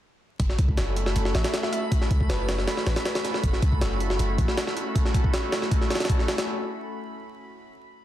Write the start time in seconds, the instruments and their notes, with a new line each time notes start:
0.39 808-style bass F#1, ambient pad A3 C#4 E4 F#4 A4, synth texture B5, kick, closed hi-hat
0.49 snare
0.58 808-style bass C#2, kick, closed hi-hat
0.68 kick
0.77 808-style bass F#1, snare, closed hi-hat
0.96 closed hi-hat
1.06 snare
1.16 808-style bass F#1, closed hi-hat
1.25 snare
1.35 808-style bass A1, synth pluck E5, snare, closed hi-hat
1.44 snare, closed hi-hat
1.54 snare, closed hi-hat
1.63 synth pluck E5, snare
1.72 synth pluck E5, closed hi-hat
1.91 ambient pad A3 C#4 E4 F#4 A4, kick, closed hi-hat
2.02 snare
2.11 808-style bass C#2, kick, closed hi-hat
2.20 kick
2.29 808-style bass F#1, synth pluck B4, snare, closed hi-hat
2.49 snare, closed hi-hat
2.58 snare
2.67 snare, closed hi-hat
2.77 snare
2.86 808-style bass A1, synth pluck B4, snare, closed hi-hat
2.96 synth pluck B4, snare, closed hi-hat
3.05 snare, closed hi-hat
3.15 snare, closed hi-hat
3.25 snare, closed hi-hat
3.34 snare
3.43 808-style bass F#1, ambient pad A3 C#4 E4 F#4 A4, kick, closed hi-hat
3.53 snare
3.62 808-style bass C#2, kick, closed hi-hat
3.72 kick
3.81 808-style bass F#1, snare, closed hi-hat
4.00 closed hi-hat
4.10 snare
4.19 808-style bass F#1, closed hi-hat
4.38 808-style bass A1, kick, closed hi-hat
4.48 snare
4.57 snare, closed hi-hat
4.67 snare
4.77 closed hi-hat
4.95 ambient pad A3 C#4 E4 F#4 A4, kick, closed hi-hat
5.05 snare
5.14 kick, closed hi-hat
5.24 kick
5.34 snare, closed hi-hat
5.52 snare, closed hi-hat
5.62 snare
5.71 kick, closed hi-hat
5.81 snare
5.90 snare, closed hi-hat
5.95 snare, closed hi-hat
6.00 snare, closed hi-hat
6.05 snare, closed hi-hat
6.09 kick, closed hi-hat
6.19 snare
6.28 snare, closed hi-hat
6.38 snare, closed hi-hat